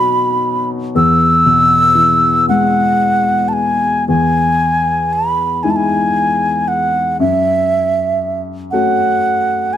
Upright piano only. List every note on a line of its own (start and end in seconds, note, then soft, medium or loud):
0.00 0.91 B2 medium
0.00 0.41 F#3 medium
0.00 0.91 D#4 medium
0.00 0.90 F#4 medium
0.95 4.04 E2 medium
1.46 3.51 B2 soft
1.95 4.03 E3 soft
2.49 4.04 G#3 soft
4.08 7.16 E2 medium
5.64 7.16 G#3 soft
5.64 7.16 D#4 soft
5.64 7.16 E4 soft
7.20 9.77 F#2 medium
8.73 9.77 A3 soft
8.73 9.77 C#4 soft
8.73 9.77 F#4 soft